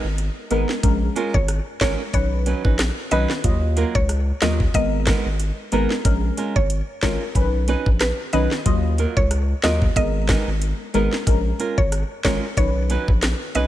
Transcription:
Already playing: synth stab G#3 B3 A#4
0.04 sub bass G#1
0.18 closed hi-hat
0.50 sub bass G#1, nylon-string guitar G#3 B3 D#4 A#4, synth stab G#3 B3 A#4, closed hi-hat
0.69 snare
0.83 sub bass A#1, synth stab G#3 C#4 A#4, kick, closed hi-hat
1.16 nylon-string guitar G#3 C#4 F4 A#4, closed hi-hat
1.34 sub bass G#1, synth pluck C#5, kick
1.48 cross-stick, closed hi-hat
1.81 sub bass G#1, synth stab G#3 C#4 A#4, nylon-string guitar G#3 C#4 F4 A#4, synth pluck C#5, kick, cross-stick, snare, closed hi-hat
2.13 sub bass B1, synth stab D#3 C#4 B4, synth pluck C#5, kick, closed hi-hat
2.46 nylon-string guitar F#3 C#4 D#4 B4, closed hi-hat
2.64 sub bass A#1, nylon-string guitar F#3 C#4 D#4 B4, kick
2.79 cross-stick, snare, closed hi-hat
3.11 sub bass B1, synth stab D#3 C#4 B4, nylon-string guitar F#3 C#4 D#4 B4, synth pluck D#5, closed hi-hat
3.30 snare
3.44 sub bass D#2, synth stab F#3 F4 D#5, kick, closed hi-hat
3.76 nylon-string guitar F#3 A#3 F4 A#4, closed hi-hat
3.95 sub bass C#2, synth pluck C#5, kick
4.09 cross-stick, closed hi-hat
4.42 sub bass D#2, nylon-string guitar F#3 A#3 F4 A#4, synth stab F#3 F4 D#5, synth pluck D#5, cross-stick, snare, closed hi-hat
4.60 kick
4.74 sub bass G#1, synth stab G#3 B3 A#4, synth pluck D#5, kick, closed hi-hat
5.07 nylon-string guitar G#3 B3 D#4 A#4, kick, cross-stick, snare, closed hi-hat
5.25 sub bass G#1
5.40 closed hi-hat
5.72 sub bass G#1, nylon-string guitar G#3 B3 D#4 A#4, synth stab G#3 B3 A#4, closed hi-hat
5.90 snare
6.05 sub bass A#1, synth stab G#3 C#4 A#4, kick, closed hi-hat
6.37 nylon-string guitar G#3 C#4 F4 A#4, closed hi-hat
6.56 sub bass G#1, synth pluck C#5, kick
6.70 closed hi-hat
7.02 sub bass G#1, nylon-string guitar G#3 C#4 F4 A#4, synth stab G#3 C#4 A#4, synth pluck C#5, kick, cross-stick, snare, closed hi-hat
7.35 sub bass B1, synth stab D#3 C#4 B4, kick, closed hi-hat
7.68 nylon-string guitar F#3 C#4 D#4 B4, closed hi-hat
7.86 sub bass A#1, kick
8.00 synth pluck B4, cross-stick, snare, closed hi-hat
8.33 sub bass B1, synth stab D#3 C#4 B4, nylon-string guitar F#3 C#4 D#4 B4, synth pluck D#5, closed hi-hat
8.51 snare
8.65 sub bass D#2, synth stab F#3 F4 D#5, kick, closed hi-hat
8.98 nylon-string guitar F#3 A#3 F4 A#4, closed hi-hat
9.17 sub bass C#2, synth pluck C#5, kick
9.31 cross-stick, closed hi-hat
9.63 sub bass D#2, nylon-string guitar F#3 A#3 F4 A#4, synth stab F#3 F4 D#5, synth pluck D#5, cross-stick, snare, closed hi-hat
9.82 kick
9.96 sub bass G#1, synth stab G#3 B3 A#4, synth pluck D#5, kick, closed hi-hat
10.28 nylon-string guitar G#3 B3 D#4 A#4, kick, cross-stick, snare, closed hi-hat
10.47 sub bass G#1
10.62 closed hi-hat
10.94 sub bass G#1, synth stab G#3 B3 A#4, nylon-string guitar G#3 B3 D#4 A#4, closed hi-hat
11.13 snare
11.27 sub bass A#1, synth stab G#3 C#4 A#4, kick, closed hi-hat
11.59 nylon-string guitar G#3 C#4 F4 A#4, closed hi-hat
11.78 sub bass G#1, synth pluck C#5, kick
11.92 cross-stick, closed hi-hat
12.24 sub bass G#1, nylon-string guitar G#3 C#4 F4 A#4, synth stab G#3 C#4 A#4, synth pluck C#5, kick, cross-stick, snare, closed hi-hat
12.57 sub bass B1, synth stab D#3 C#4 B4, synth pluck C#5, kick, closed hi-hat
12.89 nylon-string guitar F#3 C#4 D#4 B4, closed hi-hat
13.08 sub bass A#1, kick
13.22 cross-stick, snare, closed hi-hat
13.55 sub bass B1, nylon-string guitar F#3 C#4 D#4 B4, synth pluck D#5, closed hi-hat

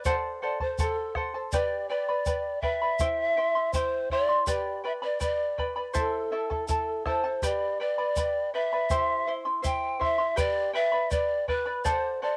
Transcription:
0.05 charango A4 C5 D5 F#5 A5, pan flute C5, bombo low, shaker
0.42 charango A4 C5 F#5 A5, pan flute D5
0.60 charango A4 C5 A5, pan flute C5, bombo low
0.78 charango A4 C5 F#5 A5, pan flute A4, bombo low, shaker
1.15 charango A4 C5 F#5 A5, bombo rim, bombo low
1.34 charango A4 C5 A5
1.52 charango G4 B4 D5 G5 B5, pan flute D5, bombo low, shaker
1.89 charango B4 D5 G5 B5, pan flute D5
2.09 charango B4 D5 B5
2.26 charango B4 D5 G5 B5, bombo low, shaker
2.62 charango B4 D5 G5 B5, pan flute E5, bombo low
2.82 charango B4 D5 B5
2.99 charango E4 C5 E5 G5 C6, bombo low, shaker
3.37 charango E4 E5 G5 C6
3.55 charango E4 E5 C6
3.73 charango E4 E5 G5 C6, pan flute C5, bombo low, shaker
4.10 charango E4 E5 G5 C6, pan flute D5, bombo low
4.29 charango E4 E5 C6
4.47 charango G4 B4 D5 G5 B5, pan flute D5, bombo low, shaker
4.84 charango B4 D5 G5 B5, pan flute E5
5.02 charango B4 D5 B5, pan flute D5
5.20 charango B4 D5 G5 B5, pan flute D5, bombo low, shaker
5.58 charango B4 D5 G5 B5, bombo low
5.76 charango B4 D5 B5
5.94 charango E4 A4 C5 E5 A5, bombo low, shaker
5.98 pan flute A4
6.32 charango E4 A4 E5 A5
6.50 charango E4 A4 A5, bombo low
6.68 charango E4 A4 E5 A5, pan flute A4, bombo low, shaker
7.06 charango E4 A4 E5 A5, pan flute C5, bombo rim, bombo low
7.24 charango E4 A4 A5
7.42 charango G4 B4 D5 G5 B5, pan flute D5, bombo low, shaker
7.80 charango B4 D5 G5 B5, pan flute D5
7.98 charango B4 D5 B5
8.16 charango B4 D5 G5 B5, bombo low, shaker
8.54 charango B4 D5 G5 B5, pan flute E5
8.73 charango B4 D5 B5
8.90 charango E4 G4 C5 E5 C6, bombo low, shaker
9.27 charango E4 C5 E5 C6
9.45 charango E4 E5 C6
9.62 charango E4 C5 E5 C6, pan flute G5, bombo low, shaker
10.00 charango E4 C5 E5 C6, pan flute E5, bombo low
10.18 charango E4 E5 C6
10.36 charango G4 B4 D5 G5 B5, pan flute D5, bombo low, shaker
10.73 charango B4 D5 G5 B5, pan flute E5
10.92 charango B4 D5 B5
11.11 charango B4 D5 G5 B5, pan flute D5, bombo low, shaker
11.48 charango B4 D5 G5 B5, pan flute B4, bombo low
11.66 charango B4 D5 B5
11.84 charango A4 C5 D5 F#5 A5, pan flute C5, bombo low, shaker
12.22 charango A4 C5 F#5 A5, pan flute D5

